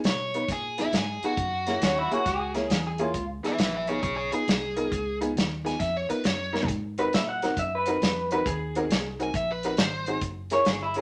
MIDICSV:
0, 0, Header, 1, 7, 480
1, 0, Start_track
1, 0, Tempo, 442478
1, 1492, Time_signature, 4, 2, 24, 8
1, 11944, End_track
2, 0, Start_track
2, 0, Title_t, "Overdriven electric guitar"
2, 0, Program_c, 0, 29
2, 63, Note_on_c, 0, 73, 92
2, 523, Note_off_c, 0, 73, 0
2, 569, Note_on_c, 0, 68, 80
2, 856, Note_off_c, 0, 68, 0
2, 879, Note_on_c, 0, 64, 82
2, 1023, Note_off_c, 0, 64, 0
2, 1058, Note_on_c, 0, 68, 72
2, 1341, Note_off_c, 0, 68, 0
2, 1356, Note_on_c, 0, 66, 80
2, 2741, Note_off_c, 0, 66, 0
2, 3753, Note_on_c, 0, 71, 84
2, 3768, Note_on_c, 0, 76, 82
2, 3896, Note_off_c, 0, 71, 0
2, 3898, Note_off_c, 0, 76, 0
2, 3907, Note_on_c, 0, 71, 76
2, 3915, Note_on_c, 0, 76, 61
2, 4051, Note_off_c, 0, 71, 0
2, 4059, Note_off_c, 0, 76, 0
2, 4079, Note_on_c, 0, 71, 68
2, 4087, Note_on_c, 0, 76, 81
2, 4207, Note_off_c, 0, 71, 0
2, 4207, Note_on_c, 0, 68, 65
2, 4215, Note_off_c, 0, 76, 0
2, 4215, Note_on_c, 0, 73, 52
2, 4355, Note_off_c, 0, 68, 0
2, 4360, Note_off_c, 0, 73, 0
2, 4368, Note_on_c, 0, 68, 74
2, 4373, Note_on_c, 0, 73, 83
2, 4502, Note_off_c, 0, 68, 0
2, 4513, Note_off_c, 0, 73, 0
2, 4515, Note_on_c, 0, 68, 72
2, 4526, Note_on_c, 0, 73, 83
2, 4673, Note_off_c, 0, 68, 0
2, 4685, Note_on_c, 0, 68, 85
2, 4686, Note_off_c, 0, 73, 0
2, 5622, Note_off_c, 0, 68, 0
2, 6146, Note_on_c, 0, 80, 80
2, 6292, Note_off_c, 0, 80, 0
2, 6297, Note_on_c, 0, 76, 76
2, 6451, Note_off_c, 0, 76, 0
2, 6473, Note_on_c, 0, 73, 71
2, 6616, Note_off_c, 0, 73, 0
2, 6616, Note_on_c, 0, 71, 78
2, 6790, Note_off_c, 0, 71, 0
2, 6790, Note_on_c, 0, 73, 75
2, 7249, Note_off_c, 0, 73, 0
2, 10010, Note_on_c, 0, 80, 87
2, 10146, Note_off_c, 0, 80, 0
2, 10156, Note_on_c, 0, 76, 94
2, 10299, Note_off_c, 0, 76, 0
2, 10324, Note_on_c, 0, 71, 76
2, 10463, Note_off_c, 0, 71, 0
2, 10482, Note_on_c, 0, 71, 75
2, 10626, Note_off_c, 0, 71, 0
2, 10626, Note_on_c, 0, 72, 83
2, 11083, Note_off_c, 0, 72, 0
2, 11944, End_track
3, 0, Start_track
3, 0, Title_t, "Clean electric guitar"
3, 0, Program_c, 1, 27
3, 1990, Note_on_c, 1, 61, 71
3, 2137, Note_off_c, 1, 61, 0
3, 2151, Note_on_c, 1, 64, 74
3, 2298, Note_off_c, 1, 64, 0
3, 2317, Note_on_c, 1, 66, 74
3, 2461, Note_off_c, 1, 66, 0
3, 2469, Note_on_c, 1, 68, 93
3, 3083, Note_off_c, 1, 68, 0
3, 3113, Note_on_c, 1, 68, 81
3, 3265, Note_off_c, 1, 68, 0
3, 3265, Note_on_c, 1, 65, 99
3, 3517, Note_off_c, 1, 65, 0
3, 7583, Note_on_c, 1, 71, 81
3, 7734, Note_off_c, 1, 71, 0
3, 7750, Note_on_c, 1, 76, 82
3, 7898, Note_off_c, 1, 76, 0
3, 7905, Note_on_c, 1, 78, 83
3, 8210, Note_off_c, 1, 78, 0
3, 8235, Note_on_c, 1, 76, 91
3, 8380, Note_off_c, 1, 76, 0
3, 8407, Note_on_c, 1, 71, 80
3, 9011, Note_off_c, 1, 71, 0
3, 9028, Note_on_c, 1, 71, 81
3, 9176, Note_off_c, 1, 71, 0
3, 9187, Note_on_c, 1, 68, 92
3, 9899, Note_off_c, 1, 68, 0
3, 11425, Note_on_c, 1, 73, 88
3, 11566, Note_on_c, 1, 68, 68
3, 11571, Note_off_c, 1, 73, 0
3, 11721, Note_off_c, 1, 68, 0
3, 11744, Note_on_c, 1, 64, 84
3, 11890, Note_off_c, 1, 64, 0
3, 11944, End_track
4, 0, Start_track
4, 0, Title_t, "Honky-tonk piano"
4, 0, Program_c, 2, 3
4, 376, Note_on_c, 2, 59, 67
4, 378, Note_on_c, 2, 65, 62
4, 380, Note_on_c, 2, 71, 73
4, 381, Note_on_c, 2, 63, 55
4, 452, Note_off_c, 2, 59, 0
4, 453, Note_off_c, 2, 65, 0
4, 455, Note_off_c, 2, 63, 0
4, 455, Note_off_c, 2, 71, 0
4, 846, Note_on_c, 2, 59, 65
4, 849, Note_on_c, 2, 65, 60
4, 855, Note_on_c, 2, 63, 65
4, 857, Note_on_c, 2, 68, 69
4, 928, Note_off_c, 2, 59, 0
4, 930, Note_off_c, 2, 65, 0
4, 933, Note_off_c, 2, 63, 0
4, 934, Note_off_c, 2, 68, 0
4, 1345, Note_on_c, 2, 63, 61
4, 1346, Note_on_c, 2, 68, 81
4, 1348, Note_on_c, 2, 59, 67
4, 1348, Note_on_c, 2, 65, 68
4, 1418, Note_off_c, 2, 63, 0
4, 1419, Note_off_c, 2, 68, 0
4, 1420, Note_off_c, 2, 59, 0
4, 1420, Note_off_c, 2, 65, 0
4, 1810, Note_on_c, 2, 61, 60
4, 1811, Note_on_c, 2, 58, 73
4, 1824, Note_on_c, 2, 68, 69
4, 1826, Note_on_c, 2, 64, 67
4, 1891, Note_off_c, 2, 61, 0
4, 1892, Note_off_c, 2, 58, 0
4, 1898, Note_off_c, 2, 68, 0
4, 1899, Note_off_c, 2, 64, 0
4, 2290, Note_on_c, 2, 58, 81
4, 2296, Note_on_c, 2, 61, 78
4, 2297, Note_on_c, 2, 68, 85
4, 2298, Note_on_c, 2, 64, 73
4, 2372, Note_off_c, 2, 58, 0
4, 2375, Note_off_c, 2, 61, 0
4, 2375, Note_off_c, 2, 68, 0
4, 2376, Note_off_c, 2, 64, 0
4, 2759, Note_on_c, 2, 58, 76
4, 2763, Note_on_c, 2, 64, 73
4, 2766, Note_on_c, 2, 61, 76
4, 2769, Note_on_c, 2, 68, 81
4, 2847, Note_off_c, 2, 58, 0
4, 2849, Note_off_c, 2, 64, 0
4, 2850, Note_off_c, 2, 61, 0
4, 2851, Note_off_c, 2, 68, 0
4, 3246, Note_on_c, 2, 68, 96
4, 3247, Note_on_c, 2, 58, 88
4, 3247, Note_on_c, 2, 61, 76
4, 3247, Note_on_c, 2, 64, 77
4, 3330, Note_off_c, 2, 68, 0
4, 3331, Note_off_c, 2, 58, 0
4, 3331, Note_off_c, 2, 61, 0
4, 3331, Note_off_c, 2, 64, 0
4, 3723, Note_on_c, 2, 59, 68
4, 3724, Note_on_c, 2, 65, 59
4, 3727, Note_on_c, 2, 63, 59
4, 3732, Note_on_c, 2, 68, 79
4, 3809, Note_off_c, 2, 59, 0
4, 3810, Note_off_c, 2, 65, 0
4, 3811, Note_off_c, 2, 63, 0
4, 3814, Note_off_c, 2, 68, 0
4, 4215, Note_on_c, 2, 59, 69
4, 4224, Note_on_c, 2, 63, 62
4, 4224, Note_on_c, 2, 68, 84
4, 4226, Note_on_c, 2, 65, 67
4, 4295, Note_off_c, 2, 59, 0
4, 4300, Note_off_c, 2, 63, 0
4, 4300, Note_off_c, 2, 68, 0
4, 4301, Note_off_c, 2, 65, 0
4, 4692, Note_on_c, 2, 59, 71
4, 4697, Note_on_c, 2, 63, 66
4, 4698, Note_on_c, 2, 65, 62
4, 4699, Note_on_c, 2, 71, 69
4, 4774, Note_off_c, 2, 59, 0
4, 4776, Note_off_c, 2, 63, 0
4, 4777, Note_off_c, 2, 65, 0
4, 4777, Note_off_c, 2, 71, 0
4, 5166, Note_on_c, 2, 59, 72
4, 5169, Note_on_c, 2, 63, 69
4, 5171, Note_on_c, 2, 70, 88
4, 5174, Note_on_c, 2, 65, 73
4, 5251, Note_off_c, 2, 59, 0
4, 5252, Note_off_c, 2, 63, 0
4, 5254, Note_off_c, 2, 70, 0
4, 5255, Note_off_c, 2, 65, 0
4, 5650, Note_on_c, 2, 63, 72
4, 5655, Note_on_c, 2, 59, 84
4, 5655, Note_on_c, 2, 68, 94
4, 5657, Note_on_c, 2, 65, 75
4, 5733, Note_off_c, 2, 63, 0
4, 5735, Note_off_c, 2, 59, 0
4, 5736, Note_off_c, 2, 65, 0
4, 5736, Note_off_c, 2, 68, 0
4, 6123, Note_on_c, 2, 65, 63
4, 6124, Note_on_c, 2, 68, 73
4, 6126, Note_on_c, 2, 59, 68
4, 6126, Note_on_c, 2, 63, 63
4, 6210, Note_off_c, 2, 65, 0
4, 6210, Note_off_c, 2, 68, 0
4, 6211, Note_off_c, 2, 59, 0
4, 6211, Note_off_c, 2, 63, 0
4, 6604, Note_on_c, 2, 59, 68
4, 6612, Note_on_c, 2, 70, 75
4, 6614, Note_on_c, 2, 63, 62
4, 6614, Note_on_c, 2, 65, 64
4, 6690, Note_off_c, 2, 59, 0
4, 6694, Note_off_c, 2, 70, 0
4, 6695, Note_off_c, 2, 63, 0
4, 6695, Note_off_c, 2, 65, 0
4, 7081, Note_on_c, 2, 63, 67
4, 7083, Note_on_c, 2, 59, 72
4, 7086, Note_on_c, 2, 70, 73
4, 7091, Note_on_c, 2, 65, 68
4, 7168, Note_off_c, 2, 63, 0
4, 7169, Note_off_c, 2, 59, 0
4, 7171, Note_off_c, 2, 70, 0
4, 7173, Note_off_c, 2, 65, 0
4, 7577, Note_on_c, 2, 60, 83
4, 7578, Note_on_c, 2, 66, 70
4, 7579, Note_on_c, 2, 63, 78
4, 7586, Note_on_c, 2, 70, 91
4, 7656, Note_off_c, 2, 60, 0
4, 7657, Note_off_c, 2, 63, 0
4, 7657, Note_off_c, 2, 66, 0
4, 7660, Note_off_c, 2, 70, 0
4, 8058, Note_on_c, 2, 70, 91
4, 8060, Note_on_c, 2, 66, 77
4, 8061, Note_on_c, 2, 60, 81
4, 8065, Note_on_c, 2, 63, 74
4, 8136, Note_off_c, 2, 70, 0
4, 8137, Note_off_c, 2, 66, 0
4, 8138, Note_off_c, 2, 60, 0
4, 8140, Note_off_c, 2, 63, 0
4, 8534, Note_on_c, 2, 60, 76
4, 8544, Note_on_c, 2, 66, 69
4, 8546, Note_on_c, 2, 63, 80
4, 8551, Note_on_c, 2, 70, 81
4, 8614, Note_off_c, 2, 60, 0
4, 8619, Note_off_c, 2, 66, 0
4, 8620, Note_off_c, 2, 63, 0
4, 8623, Note_off_c, 2, 70, 0
4, 9022, Note_on_c, 2, 60, 81
4, 9025, Note_on_c, 2, 63, 80
4, 9027, Note_on_c, 2, 66, 80
4, 9033, Note_on_c, 2, 70, 94
4, 9098, Note_off_c, 2, 60, 0
4, 9099, Note_off_c, 2, 63, 0
4, 9100, Note_off_c, 2, 66, 0
4, 9103, Note_off_c, 2, 70, 0
4, 9504, Note_on_c, 2, 60, 82
4, 9506, Note_on_c, 2, 66, 78
4, 9508, Note_on_c, 2, 63, 74
4, 9508, Note_on_c, 2, 70, 99
4, 9578, Note_off_c, 2, 60, 0
4, 9579, Note_off_c, 2, 66, 0
4, 9580, Note_off_c, 2, 63, 0
4, 9580, Note_off_c, 2, 70, 0
4, 9973, Note_on_c, 2, 63, 60
4, 9979, Note_on_c, 2, 60, 67
4, 9980, Note_on_c, 2, 66, 63
4, 9982, Note_on_c, 2, 70, 71
4, 10052, Note_off_c, 2, 63, 0
4, 10055, Note_off_c, 2, 60, 0
4, 10056, Note_off_c, 2, 66, 0
4, 10057, Note_off_c, 2, 70, 0
4, 10462, Note_on_c, 2, 60, 70
4, 10465, Note_on_c, 2, 63, 57
4, 10466, Note_on_c, 2, 70, 83
4, 10468, Note_on_c, 2, 66, 69
4, 10536, Note_off_c, 2, 60, 0
4, 10537, Note_off_c, 2, 63, 0
4, 10538, Note_off_c, 2, 70, 0
4, 10539, Note_off_c, 2, 66, 0
4, 10931, Note_on_c, 2, 60, 70
4, 10932, Note_on_c, 2, 63, 64
4, 10933, Note_on_c, 2, 66, 65
4, 10935, Note_on_c, 2, 68, 78
4, 11010, Note_off_c, 2, 60, 0
4, 11010, Note_off_c, 2, 63, 0
4, 11011, Note_off_c, 2, 66, 0
4, 11012, Note_off_c, 2, 68, 0
4, 11402, Note_on_c, 2, 61, 77
4, 11406, Note_on_c, 2, 68, 76
4, 11407, Note_on_c, 2, 64, 80
4, 11411, Note_on_c, 2, 70, 90
4, 11485, Note_off_c, 2, 61, 0
4, 11486, Note_off_c, 2, 68, 0
4, 11487, Note_off_c, 2, 64, 0
4, 11489, Note_off_c, 2, 70, 0
4, 11886, Note_on_c, 2, 61, 86
4, 11888, Note_on_c, 2, 64, 77
4, 11893, Note_on_c, 2, 68, 77
4, 11899, Note_on_c, 2, 70, 89
4, 11944, Note_off_c, 2, 61, 0
4, 11944, Note_off_c, 2, 64, 0
4, 11944, Note_off_c, 2, 68, 0
4, 11944, Note_off_c, 2, 70, 0
4, 11944, End_track
5, 0, Start_track
5, 0, Title_t, "Fingered electric bass"
5, 0, Program_c, 3, 33
5, 49, Note_on_c, 3, 47, 85
5, 516, Note_off_c, 3, 47, 0
5, 525, Note_on_c, 3, 46, 78
5, 994, Note_off_c, 3, 46, 0
5, 1005, Note_on_c, 3, 44, 83
5, 1301, Note_off_c, 3, 44, 0
5, 1491, Note_on_c, 3, 42, 85
5, 1958, Note_off_c, 3, 42, 0
5, 1973, Note_on_c, 3, 39, 81
5, 2266, Note_off_c, 3, 39, 0
5, 2454, Note_on_c, 3, 37, 85
5, 2920, Note_off_c, 3, 37, 0
5, 2926, Note_on_c, 3, 40, 83
5, 3396, Note_off_c, 3, 40, 0
5, 3406, Note_on_c, 3, 37, 77
5, 3704, Note_off_c, 3, 37, 0
5, 3892, Note_on_c, 3, 34, 89
5, 4360, Note_off_c, 3, 34, 0
5, 4368, Note_on_c, 3, 35, 88
5, 4664, Note_off_c, 3, 35, 0
5, 4856, Note_on_c, 3, 36, 84
5, 5322, Note_off_c, 3, 36, 0
5, 5337, Note_on_c, 3, 37, 80
5, 5802, Note_off_c, 3, 37, 0
5, 5819, Note_on_c, 3, 39, 89
5, 6283, Note_off_c, 3, 39, 0
5, 6290, Note_on_c, 3, 41, 76
5, 6585, Note_off_c, 3, 41, 0
5, 6784, Note_on_c, 3, 42, 79
5, 7245, Note_off_c, 3, 42, 0
5, 7254, Note_on_c, 3, 44, 80
5, 7720, Note_off_c, 3, 44, 0
5, 7745, Note_on_c, 3, 46, 87
5, 8206, Note_off_c, 3, 46, 0
5, 8213, Note_on_c, 3, 42, 86
5, 8679, Note_off_c, 3, 42, 0
5, 8695, Note_on_c, 3, 41, 83
5, 9160, Note_off_c, 3, 41, 0
5, 9182, Note_on_c, 3, 39, 76
5, 9639, Note_off_c, 3, 39, 0
5, 9645, Note_on_c, 3, 36, 95
5, 10113, Note_off_c, 3, 36, 0
5, 10136, Note_on_c, 3, 34, 81
5, 10598, Note_off_c, 3, 34, 0
5, 10610, Note_on_c, 3, 32, 89
5, 11075, Note_off_c, 3, 32, 0
5, 11083, Note_on_c, 3, 30, 88
5, 11550, Note_off_c, 3, 30, 0
5, 11563, Note_on_c, 3, 31, 97
5, 11944, Note_off_c, 3, 31, 0
5, 11944, End_track
6, 0, Start_track
6, 0, Title_t, "Muted fingered electric bass strokes"
6, 1325, Note_on_c, 9, 29, 35
6, 1433, Note_off_c, 9, 29, 0
6, 2292, Note_on_c, 9, 29, 34
6, 2400, Note_off_c, 9, 29, 0
6, 3727, Note_on_c, 9, 29, 43
6, 3836, Note_off_c, 9, 29, 0
6, 6612, Note_on_c, 9, 29, 41
6, 6720, Note_off_c, 9, 29, 0
6, 11944, End_track
7, 0, Start_track
7, 0, Title_t, "Drums"
7, 42, Note_on_c, 9, 42, 82
7, 56, Note_on_c, 9, 38, 105
7, 151, Note_off_c, 9, 42, 0
7, 165, Note_off_c, 9, 38, 0
7, 370, Note_on_c, 9, 42, 58
7, 478, Note_off_c, 9, 42, 0
7, 526, Note_on_c, 9, 36, 95
7, 527, Note_on_c, 9, 42, 77
7, 541, Note_on_c, 9, 38, 31
7, 634, Note_off_c, 9, 36, 0
7, 636, Note_off_c, 9, 42, 0
7, 650, Note_off_c, 9, 38, 0
7, 846, Note_on_c, 9, 42, 63
7, 860, Note_on_c, 9, 38, 34
7, 954, Note_off_c, 9, 42, 0
7, 968, Note_off_c, 9, 38, 0
7, 1007, Note_on_c, 9, 42, 82
7, 1021, Note_on_c, 9, 38, 96
7, 1116, Note_off_c, 9, 42, 0
7, 1130, Note_off_c, 9, 38, 0
7, 1331, Note_on_c, 9, 42, 56
7, 1440, Note_off_c, 9, 42, 0
7, 1490, Note_on_c, 9, 36, 105
7, 1491, Note_on_c, 9, 42, 71
7, 1598, Note_off_c, 9, 36, 0
7, 1599, Note_off_c, 9, 42, 0
7, 1807, Note_on_c, 9, 42, 58
7, 1821, Note_on_c, 9, 38, 27
7, 1915, Note_off_c, 9, 42, 0
7, 1930, Note_off_c, 9, 38, 0
7, 1972, Note_on_c, 9, 42, 87
7, 1986, Note_on_c, 9, 38, 101
7, 2080, Note_off_c, 9, 42, 0
7, 2094, Note_off_c, 9, 38, 0
7, 2295, Note_on_c, 9, 42, 55
7, 2403, Note_off_c, 9, 42, 0
7, 2448, Note_on_c, 9, 42, 69
7, 2450, Note_on_c, 9, 36, 96
7, 2462, Note_on_c, 9, 38, 27
7, 2557, Note_off_c, 9, 42, 0
7, 2559, Note_off_c, 9, 36, 0
7, 2571, Note_off_c, 9, 38, 0
7, 2761, Note_on_c, 9, 42, 58
7, 2776, Note_on_c, 9, 38, 33
7, 2870, Note_off_c, 9, 42, 0
7, 2884, Note_off_c, 9, 38, 0
7, 2930, Note_on_c, 9, 42, 80
7, 2944, Note_on_c, 9, 38, 100
7, 3038, Note_off_c, 9, 42, 0
7, 3052, Note_off_c, 9, 38, 0
7, 3236, Note_on_c, 9, 42, 52
7, 3344, Note_off_c, 9, 42, 0
7, 3408, Note_on_c, 9, 36, 94
7, 3408, Note_on_c, 9, 42, 79
7, 3517, Note_off_c, 9, 36, 0
7, 3517, Note_off_c, 9, 42, 0
7, 3736, Note_on_c, 9, 42, 52
7, 3750, Note_on_c, 9, 38, 29
7, 3845, Note_off_c, 9, 42, 0
7, 3859, Note_off_c, 9, 38, 0
7, 3889, Note_on_c, 9, 42, 86
7, 3903, Note_on_c, 9, 38, 111
7, 3997, Note_off_c, 9, 42, 0
7, 4011, Note_off_c, 9, 38, 0
7, 4202, Note_on_c, 9, 42, 51
7, 4310, Note_off_c, 9, 42, 0
7, 4370, Note_on_c, 9, 36, 93
7, 4370, Note_on_c, 9, 42, 75
7, 4478, Note_off_c, 9, 36, 0
7, 4478, Note_off_c, 9, 42, 0
7, 4689, Note_on_c, 9, 42, 59
7, 4798, Note_off_c, 9, 42, 0
7, 4858, Note_on_c, 9, 42, 78
7, 4873, Note_on_c, 9, 38, 109
7, 4967, Note_off_c, 9, 42, 0
7, 4981, Note_off_c, 9, 38, 0
7, 5170, Note_on_c, 9, 42, 65
7, 5278, Note_off_c, 9, 42, 0
7, 5334, Note_on_c, 9, 36, 101
7, 5341, Note_on_c, 9, 42, 82
7, 5443, Note_off_c, 9, 36, 0
7, 5449, Note_off_c, 9, 42, 0
7, 5657, Note_on_c, 9, 42, 62
7, 5766, Note_off_c, 9, 42, 0
7, 5827, Note_on_c, 9, 42, 82
7, 5841, Note_on_c, 9, 38, 98
7, 5935, Note_off_c, 9, 42, 0
7, 5949, Note_off_c, 9, 38, 0
7, 6142, Note_on_c, 9, 42, 57
7, 6156, Note_on_c, 9, 38, 27
7, 6250, Note_off_c, 9, 42, 0
7, 6264, Note_off_c, 9, 38, 0
7, 6291, Note_on_c, 9, 42, 70
7, 6292, Note_on_c, 9, 36, 96
7, 6305, Note_on_c, 9, 38, 28
7, 6400, Note_off_c, 9, 36, 0
7, 6400, Note_off_c, 9, 42, 0
7, 6414, Note_off_c, 9, 38, 0
7, 6614, Note_on_c, 9, 42, 56
7, 6723, Note_off_c, 9, 42, 0
7, 6768, Note_on_c, 9, 42, 76
7, 6782, Note_on_c, 9, 38, 96
7, 6877, Note_off_c, 9, 42, 0
7, 6891, Note_off_c, 9, 38, 0
7, 7106, Note_on_c, 9, 38, 50
7, 7190, Note_on_c, 9, 43, 86
7, 7215, Note_off_c, 9, 38, 0
7, 7249, Note_on_c, 9, 36, 95
7, 7251, Note_on_c, 9, 42, 74
7, 7299, Note_off_c, 9, 43, 0
7, 7358, Note_off_c, 9, 36, 0
7, 7359, Note_off_c, 9, 42, 0
7, 7570, Note_on_c, 9, 42, 50
7, 7678, Note_off_c, 9, 42, 0
7, 7734, Note_on_c, 9, 42, 74
7, 7748, Note_on_c, 9, 38, 109
7, 7843, Note_off_c, 9, 42, 0
7, 7857, Note_off_c, 9, 38, 0
7, 8052, Note_on_c, 9, 42, 61
7, 8067, Note_on_c, 9, 38, 32
7, 8161, Note_off_c, 9, 42, 0
7, 8175, Note_off_c, 9, 38, 0
7, 8210, Note_on_c, 9, 36, 101
7, 8212, Note_on_c, 9, 42, 73
7, 8318, Note_off_c, 9, 36, 0
7, 8321, Note_off_c, 9, 42, 0
7, 8523, Note_on_c, 9, 42, 65
7, 8631, Note_off_c, 9, 42, 0
7, 8699, Note_on_c, 9, 42, 76
7, 8713, Note_on_c, 9, 38, 107
7, 8807, Note_off_c, 9, 42, 0
7, 8821, Note_off_c, 9, 38, 0
7, 9012, Note_on_c, 9, 42, 61
7, 9121, Note_off_c, 9, 42, 0
7, 9175, Note_on_c, 9, 36, 113
7, 9183, Note_on_c, 9, 42, 89
7, 9284, Note_off_c, 9, 36, 0
7, 9291, Note_off_c, 9, 42, 0
7, 9495, Note_on_c, 9, 42, 63
7, 9604, Note_off_c, 9, 42, 0
7, 9661, Note_on_c, 9, 42, 86
7, 9675, Note_on_c, 9, 38, 108
7, 9769, Note_off_c, 9, 42, 0
7, 9783, Note_off_c, 9, 38, 0
7, 9978, Note_on_c, 9, 42, 59
7, 10087, Note_off_c, 9, 42, 0
7, 10131, Note_on_c, 9, 36, 105
7, 10139, Note_on_c, 9, 42, 75
7, 10240, Note_off_c, 9, 36, 0
7, 10248, Note_off_c, 9, 42, 0
7, 10448, Note_on_c, 9, 42, 60
7, 10557, Note_off_c, 9, 42, 0
7, 10599, Note_on_c, 9, 42, 75
7, 10613, Note_on_c, 9, 38, 112
7, 10708, Note_off_c, 9, 42, 0
7, 10722, Note_off_c, 9, 38, 0
7, 10915, Note_on_c, 9, 42, 50
7, 11024, Note_off_c, 9, 42, 0
7, 11080, Note_on_c, 9, 42, 79
7, 11081, Note_on_c, 9, 36, 103
7, 11188, Note_off_c, 9, 42, 0
7, 11189, Note_off_c, 9, 36, 0
7, 11392, Note_on_c, 9, 42, 57
7, 11406, Note_on_c, 9, 38, 30
7, 11501, Note_off_c, 9, 42, 0
7, 11515, Note_off_c, 9, 38, 0
7, 11554, Note_on_c, 9, 42, 79
7, 11568, Note_on_c, 9, 38, 107
7, 11663, Note_off_c, 9, 42, 0
7, 11677, Note_off_c, 9, 38, 0
7, 11869, Note_on_c, 9, 42, 53
7, 11944, Note_off_c, 9, 42, 0
7, 11944, End_track
0, 0, End_of_file